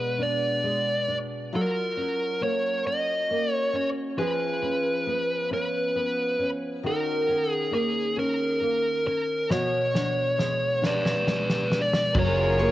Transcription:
Already playing: nylon-string guitar B2 G#3 D4 G#4, lead electric guitar B4
0.18 nylon-string guitar D4
0.23 lead electric guitar D5
0.63 nylon-string guitar G#3
1.08 nylon-string guitar D4
1.53 nylon-string guitar F#3 F4, lead electric guitar A#4
1.97 nylon-string guitar C#4
2.41 nylon-string guitar A#3, lead electric guitar C#5
2.85 nylon-string guitar C#4, lead electric guitar D#5
3.30 nylon-string guitar A#3
3.52 lead electric guitar C#5
3.73 nylon-string guitar C#4, lead electric guitar C#5
4.18 nylon-string guitar F3 G#4, lead electric guitar B4
4.62 nylon-string guitar C#4
5.07 nylon-string guitar B3
5.50 nylon-string guitar C#4, lead electric guitar B4
5.95 nylon-string guitar B3
6.39 nylon-string guitar C#4
6.83 nylon-string guitar D#3 F#4, lead electric guitar A#4
7.28 nylon-string guitar C#4
7.51 lead electric guitar G#4
7.71 nylon-string guitar A#3, lead electric guitar G#4
8.17 nylon-string guitar C#4, lead electric guitar A#4
8.61 nylon-string guitar A#3
9.05 nylon-string guitar C#4, lead electric guitar A#4
9.49 nylon-string guitar B2 F#4, lead electric guitar C#5, snare
9.94 nylon-string guitar D4, snare
10.38 nylon-string guitar G#3, snare
10.82 nylon-string guitar D4, snare
10.86 lead electric guitar B4 D5
11.06 snare
11.26 nylon-string guitar G#3, snare
11.50 snare
11.70 nylon-string guitar D4, snare
11.93 snare
12.14 upright bass F#1, nylon-string guitar F#3, string section F#3 C#4 F4 G#4 A#4, kick, crash
12.19 lead electric guitar C#5
12.59 nylon-string guitar A#3, ride

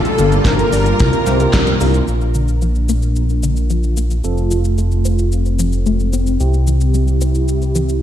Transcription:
Already playing: analog synth pad G3 A#3 D4 F4, fm electric piano A#3 F4 G4, string machine A4, analog synth lead A4
0.05 closed hi-hat, shaker
0.18 detuned saw bass G1, synth arpeggio sound D3, fm electric piano A#3 F4 G4, closed hi-hat, shaker
0.32 closed hi-hat, shaker
0.45 detuned saw bass G1, synth arpeggio sound F3, analog synth lead A#4, string machine A#4, kick, snare, clap, closed hi-hat, shaker
0.59 fm electric piano A#3 F4 A4, closed hi-hat, shaker
0.73 detuned saw bass G1, synth arpeggio sound G3, open hi-hat, shaker
0.86 closed hi-hat, shaker
0.99 detuned saw bass C2, analog synth pad C3 A#3, fm electric piano C4 F4 A#4, kick, closed hi-hat, shaker
1.13 closed hi-hat, shaker
1.27 detuned saw bass C2, synth arpeggio sound F3, snare, closed hi-hat, shaker
1.40 fm electric piano C4 F4 A#4, closed hi-hat, shaker
1.54 detuned saw bass C2, synth arpeggio sound G3, kick, snare, clap, closed hi-hat, shaker
1.67 closed hi-hat, shaker
1.81 detuned saw bass C2, synth arpeggio sound A#3, fm electric piano D4 F4 A#4, open hi-hat, shaker
1.94 closed hi-hat, shaker
2.08 detuned saw bass A#1, analog synth pad A#3 D4 F4, fm electric piano D4 F4 A#4, shaker
2.21 shaker
2.35 synth arpeggio sound D3, shaker
2.48 shaker
2.62 synth arpeggio sound F3, shaker
2.75 shaker
2.89 synth arpeggio sound A#3, shaker
3.02 shaker
3.16 shaker
3.29 shaker
3.43 synth arpeggio sound D3, shaker
3.56 shaker
3.70 synth arpeggio sound F3, shaker
3.83 shaker
3.97 synth arpeggio sound A#3, shaker
4.10 shaker
4.24 detuned saw bass F1, analog synth pad A3 C4, fm electric piano C4 F4 A4, shaker
4.38 shaker
4.51 synth arpeggio sound F3, shaker
4.65 shaker
4.78 synth arpeggio sound A3, shaker
4.92 shaker
5.05 synth arpeggio sound C4, shaker
5.19 shaker
5.32 shaker
5.46 shaker
5.59 synth arpeggio sound F3, shaker
5.73 shaker
5.86 synth arpeggio sound A3, shaker
6.00 shaker
6.13 synth arpeggio sound C4, shaker
6.27 shaker
6.40 detuned saw bass C2, analog synth pad C3 E4 G4, fm electric piano C4 E4 G4, shaker
6.54 shaker
6.67 synth arpeggio sound E3, shaker
6.81 shaker
6.94 synth arpeggio sound G3, shaker
7.08 shaker
7.21 synth arpeggio sound C4, shaker
7.35 shaker
7.48 shaker
7.62 shaker
7.75 synth arpeggio sound E3, shaker
7.89 shaker

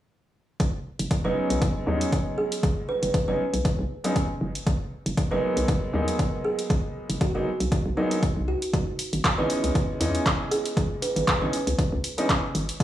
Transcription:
0.60 fm bass B1, kick, closed hi-hat
0.99 fm bass F#1, closed hi-hat
1.11 kick, closed hi-hat
1.24 fm bass F#1, felt piano F#3 G#3 B3 C#4 D#4, kalimba B4
1.50 fm bass B1, closed hi-hat
1.62 fm bass F#1, kick, closed hi-hat
1.86 fm bass D#2, felt piano F#3 G#3 B3 C#4 D#4
2.01 closed hi-hat
2.12 kick, closed hi-hat
2.38 kalimba G#4
2.52 closed hi-hat
2.63 fm bass B1, kick, closed hi-hat
2.89 kalimba B4
3.02 fm bass F#1, kalimba B4, closed hi-hat
3.14 kick, closed hi-hat
3.28 fm bass F#1, felt piano F#3 G#3 B3 C#4 D#4, kalimba B4
3.54 fm bass B1, closed hi-hat
3.65 kick, closed hi-hat
3.79 fm bass B1
4.04 felt piano F#3 G#3 B3 C#4 D#4, closed hi-hat
4.16 kick, closed hi-hat
4.41 fm bass F#1
4.55 closed hi-hat
4.67 fm bass B1, kick, closed hi-hat
5.06 fm bass F#1, closed hi-hat
5.17 kick, closed hi-hat
5.31 fm bass F#1, felt piano F#3 G#3 A#3 B3 D#4, kalimba B4
5.57 fm bass B1, closed hi-hat
5.68 fm bass F#1, kick, closed hi-hat
5.93 fm bass D#2, felt piano F#3 G#3 A#3 B3 D#4
6.08 closed hi-hat
6.19 kick, closed hi-hat
6.45 kalimba G#4
6.59 closed hi-hat
6.70 fm bass B1, kick, closed hi-hat
7.10 fm bass F#1, closed hi-hat
7.21 kalimba F#4, kick, closed hi-hat
7.34 fm bass F#1, felt piano F#3 G#3 A#3 B3 D#4, kalimba F#4
7.60 fm bass B1, closed hi-hat
7.72 kick, closed hi-hat
7.86 fm bass B1
7.97 felt piano F#3 G#3 A#3 B3 D#4, kalimba D#4
8.11 kalimba D#4, closed hi-hat
8.23 kick, closed hi-hat
8.37 fm bass B1
8.48 fm bass C#2, kalimba F#4
8.62 closed hi-hat
8.73 fm bass C#2, kick, closed hi-hat
8.99 open hi-hat
9.13 fm bass G#1, closed hi-hat
9.24 kick, clap, closed hi-hat
9.38 fm bass G#1, felt piano E3 G#3 B3 C#4 D#4, kalimba B4
9.50 open hi-hat
9.64 fm bass C#2, closed hi-hat
9.75 fm bass G#1, kick, closed hi-hat
10.00 fm bass E2, felt piano E3 G#3 B3 C#4 D#4, open hi-hat
10.15 closed hi-hat
10.26 kick, clap, closed hi-hat
10.51 kalimba G#4, open hi-hat
10.65 closed hi-hat
10.77 fm bass C#2, kick, closed hi-hat
11.02 kalimba B4, open hi-hat
11.16 fm bass G#1, kalimba B4, closed hi-hat
11.28 kick, clap, closed hi-hat
11.41 fm bass G#1, felt piano E3 G#3 B3 C#4 D#4, kalimba B4
11.53 open hi-hat
11.67 fm bass C#2, closed hi-hat
11.79 kick, closed hi-hat
11.92 fm bass C#2
12.04 open hi-hat
12.18 felt piano E3 G#3 B3 C#4 D#4, closed hi-hat
12.29 kick, clap, closed hi-hat
12.55 fm bass G#1, open hi-hat
12.69 closed hi-hat
12.80 fm bass C#2, kick, closed hi-hat

